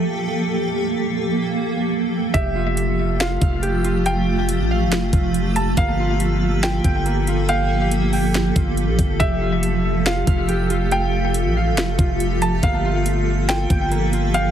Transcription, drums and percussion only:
2.34 kick loud
2.34 closed hi-hat medium
2.77 closed hi-hat medium
3.20 snare loud
3.20 closed hi-hat medium
3.42 kick loud
3.42 closed hi-hat medium
3.63 closed hi-hat medium
3.85 closed hi-hat medium
4.06 closed hi-hat medium
4.49 closed hi-hat loud
4.92 snare loud
4.92 closed hi-hat medium
5.13 kick loud
5.13 closed hi-hat medium
5.34 closed hi-hat medium
5.56 closed hi-hat medium
5.77 kick loud
5.77 closed hi-hat medium
6.20 closed hi-hat medium
6.63 snare loud
6.63 closed hi-hat medium
6.84 kick loud
6.84 closed hi-hat medium
7.06 closed hi-hat medium
7.27 closed hi-hat medium
7.49 closed hi-hat medium
7.91 closed hi-hat loud
8.13 open hi-hat medium
8.34 snare loud
8.34 closed hi-hat medium
8.56 kick loud
8.56 closed hi-hat medium
8.77 closed hi-hat medium
8.99 kick loud
8.99 closed hi-hat medium
9.20 kick loud
9.20 closed hi-hat medium
9.63 closed hi-hat loud
10.06 snare loud
10.06 closed hi-hat medium
10.27 kick loud
10.27 closed hi-hat medium
10.49 closed hi-hat medium
10.70 closed hi-hat medium
10.91 closed hi-hat medium
11.34 closed hi-hat loud
11.77 snare loud
11.77 closed hi-hat medium
11.99 kick loud
11.99 closed hi-hat medium
12.20 closed hi-hat medium
12.42 closed hi-hat medium
12.63 kick loud
12.63 closed hi-hat medium
13.06 closed hi-hat medium
13.49 snare loud
13.49 closed hi-hat medium
13.70 kick loud
13.70 closed hi-hat medium
13.92 closed hi-hat medium
14.13 closed hi-hat medium
14.34 closed hi-hat medium

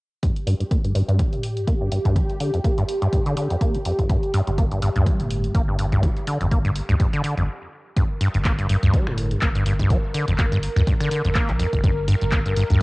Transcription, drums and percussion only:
0.22 kick loud
0.22 closed hi-hat medium
0.36 closed hi-hat soft
0.47 open hi-hat medium
0.60 closed hi-hat soft
0.71 kick loud
0.71 closed hi-hat medium
0.84 closed hi-hat soft
0.95 open hi-hat medium
1.09 closed hi-hat soft
1.19 kick loud
1.19 closed hi-hat medium
1.33 closed hi-hat soft
1.44 open hi-hat medium
1.57 closed hi-hat medium
1.68 kick loud
1.68 closed hi-hat medium
1.92 open hi-hat medium
2.05 kick medium
2.05 closed hi-hat soft
2.16 kick loud
2.16 closed hi-hat medium
2.30 closed hi-hat soft
2.40 open hi-hat loud
2.54 closed hi-hat soft
2.64 kick loud
2.64 closed hi-hat medium
2.78 closed hi-hat soft
2.89 open hi-hat loud
3.02 closed hi-hat soft
3.13 kick loud
3.13 closed hi-hat medium
3.26 closed hi-hat soft
3.37 open hi-hat medium
3.51 closed hi-hat medium
3.61 kick loud
3.61 closed hi-hat medium
3.75 closed hi-hat soft
3.85 open hi-hat loud
3.99 kick medium
3.99 closed hi-hat soft
4.10 kick loud
4.10 closed hi-hat medium
4.23 closed hi-hat soft
4.34 open hi-hat loud
4.47 closed hi-hat soft
4.58 kick loud
4.58 closed hi-hat medium
4.71 closed hi-hat soft
4.82 open hi-hat loud
4.96 closed hi-hat soft
5.06 kick loud
5.06 closed hi-hat medium
5.20 closed hi-hat soft
5.31 open hi-hat loud
5.44 closed hi-hat soft
5.55 kick loud
5.55 closed hi-hat medium
5.79 open hi-hat loud
5.92 kick medium
5.92 closed hi-hat soft
6.03 kick loud
6.03 closed hi-hat medium
6.17 closed hi-hat soft
6.27 open hi-hat loud
6.41 closed hi-hat soft
6.51 kick loud
6.51 closed hi-hat medium
6.65 closed hi-hat soft
6.76 open hi-hat loud
6.89 closed hi-hat soft
7.00 kick loud
7.00 closed hi-hat medium
7.13 closed hi-hat soft
7.24 open hi-hat loud
7.38 closed hi-hat soft
7.97 kick loud
7.97 closed hi-hat medium
8.21 open hi-hat loud
8.34 closed hi-hat medium
8.45 kick loud
8.45 clap loud
8.45 closed hi-hat medium
8.58 closed hi-hat soft
8.69 open hi-hat loud
8.83 closed hi-hat medium
8.93 kick loud
8.93 closed hi-hat medium
9.07 finger snap medium
9.18 open hi-hat loud
9.31 closed hi-hat medium
9.41 kick loud
9.41 clap loud
9.41 closed hi-hat medium
9.55 closed hi-hat soft
9.66 open hi-hat loud
9.79 kick medium
9.79 closed hi-hat medium
9.90 kick loud
9.90 closed hi-hat medium
10.14 open hi-hat loud
10.28 closed hi-hat medium
10.38 kick loud
10.38 clap loud
10.38 closed hi-hat medium
10.52 closed hi-hat soft
10.63 open hi-hat loud
10.76 finger snap medium
10.76 closed hi-hat medium
10.87 kick loud
10.87 closed hi-hat medium
11.00 finger snap medium
11.00 open hi-hat medium
11.11 open hi-hat loud
11.25 closed hi-hat medium
11.35 kick loud
11.35 clap loud
11.35 closed hi-hat medium
11.49 clap soft
11.49 closed hi-hat soft
11.60 finger snap medium
11.60 open hi-hat loud
11.73 kick medium
11.73 closed hi-hat soft
11.84 kick loud
11.84 closed hi-hat medium
12.08 open hi-hat loud
12.21 closed hi-hat medium
12.32 kick loud
12.32 clap loud
12.32 closed hi-hat medium
12.46 closed hi-hat soft
12.56 open hi-hat loud
12.70 closed hi-hat soft

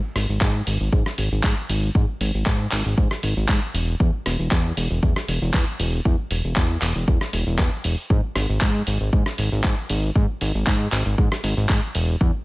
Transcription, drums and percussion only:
0.16 cross-stick medium
0.16 open hi-hat loud
0.41 kick loud
0.41 clap loud
0.67 open hi-hat loud
0.93 kick loud
1.06 cross-stick medium
1.18 open hi-hat loud
1.44 kick loud
1.44 clap loud
1.70 open hi-hat loud
1.95 kick loud
2.21 open hi-hat loud
2.46 kick loud
2.46 clap loud
2.72 clap medium
2.72 open hi-hat loud
2.98 kick loud
3.11 cross-stick medium
3.23 open hi-hat loud
3.49 kick loud
3.49 clap loud
3.75 open hi-hat loud
4.00 kick loud
4.26 cross-stick medium
4.26 open hi-hat loud
4.51 kick loud
4.51 clap loud
4.77 open hi-hat loud
5.03 kick loud
5.16 cross-stick medium
5.28 open hi-hat loud
5.54 kick loud
5.54 clap loud
5.80 open hi-hat loud
6.05 kick loud
6.31 open hi-hat loud
6.56 kick loud
6.56 clap loud
6.82 clap medium
6.82 open hi-hat loud
7.08 kick loud
7.21 cross-stick medium
7.33 open hi-hat loud
7.59 kick loud
7.59 clap loud
7.84 open hi-hat loud
8.10 kick loud
8.36 cross-stick medium
8.36 open hi-hat loud
8.61 kick loud
8.61 clap loud
8.87 open hi-hat loud
9.13 kick loud
9.26 cross-stick medium
9.38 open hi-hat loud
9.64 kick loud
9.64 clap loud
9.90 open hi-hat loud
10.16 kick loud
10.41 open hi-hat loud
10.67 kick loud
10.67 clap loud
10.92 clap medium
10.92 open hi-hat loud
11.18 kick loud
11.32 cross-stick medium
11.44 open hi-hat loud
11.69 kick loud
11.69 clap loud
11.95 open hi-hat loud
12.21 kick loud

